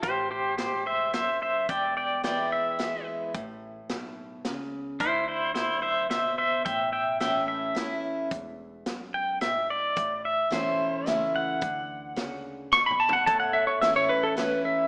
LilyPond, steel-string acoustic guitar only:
\new Staff \with { instrumentName = "Steel-string acoustic guitar" } { \clef bass \time 3/4 \key a \major \tempo 4 = 109 << { r2. | r4 <e gis b e'>4 <e gis b e'>4 | r2. | r2. |
r4 <e a cis' e'>4 <e a cis' e'>4 | r2. | r4 <e a cis' e'>4 <e a cis' e'>4 | r2. |
r4 <e a cis' e'>4 <e a cis' e'>4 | } \\ { a,4 gis,4 fis,4 | e,2 r4 | a,4 b,4 cis4 | d4 fis,4 b,4 |
a,2 r4 | e,4 fis,4 gis,4 | a,2 r4 | d4 cis4 b,4 |
a,2 r4 | } >> }